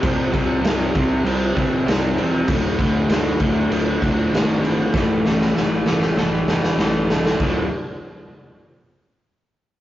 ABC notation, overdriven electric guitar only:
X:1
M:4/4
L:1/8
Q:1/4=98
K:Clyd
V:1 name="Overdriven electric guitar" clef=bass
[C,G,C] [C,G,C] [C,G,C] [C,G,C] [C,G,C] [C,G,C] [C,G,C] [C,G,C] | [D,,A,,D,] [D,,A,,D,] [D,,A,,D,] [D,,A,,D,] [D,,A,,D,] [D,,A,,D,] [D,,A,,D,] [D,,A,,D,] | [A,,E,A,] [A,,E,A,] [A,,E,A,] [A,,E,A,] [A,,E,A,] [A,,E,A,] [A,,E,A,] [A,,E,A,] | [D,,A,,D,] z6 z |]